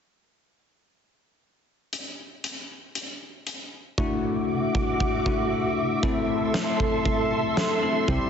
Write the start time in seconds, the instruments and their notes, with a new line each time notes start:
1.93 closed hi-hat
2.44 closed hi-hat
2.95 closed hi-hat
3.47 closed hi-hat
3.98 tine electric piano A3 D4 E4 F#4, string machine F#4 E5 D6, kick
4.75 kick
5.00 kick
5.26 tine electric piano A3 D4 E4 F#4, kick
6.03 tine electric piano A3 C4 E4 A4, string machine A4 C6, kick
6.54 snare
6.80 kick
7.05 kick
7.57 snare
7.82 tine electric piano A3 C4 E4 A4
8.08 fm bass C2, tine electric piano G3 C4 E4 G4, string machine G4, kick